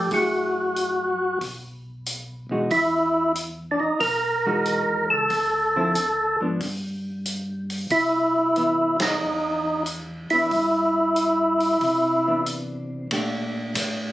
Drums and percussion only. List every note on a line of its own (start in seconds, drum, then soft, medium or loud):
0.11 kick soft
0.11 open hi-hat soft
0.76 closed hi-hat medium
1.41 kick soft
1.41 open hi-hat soft
2.06 closed hi-hat medium
2.71 kick soft
2.71 open hi-hat soft
3.35 closed hi-hat soft
4.00 kick soft
4.00 open hi-hat soft
4.66 closed hi-hat soft
5.30 kick soft
5.30 open hi-hat soft
5.95 closed hi-hat soft
6.61 kick soft
6.61 open hi-hat soft
7.26 closed hi-hat soft
7.70 open hi-hat soft
7.90 kick soft
7.90 open hi-hat soft
8.56 closed hi-hat soft
9.00 snare medium
9.00 ride medium
9.86 closed hi-hat soft
10.30 open hi-hat soft
10.51 kick soft
10.51 open hi-hat soft
11.16 closed hi-hat soft
11.60 open hi-hat soft
11.81 kick soft
11.81 open hi-hat soft
12.46 closed hi-hat medium
13.11 kick soft
13.11 ride medium
13.75 kick soft
13.75 hi-hat pedal medium
13.75 ride medium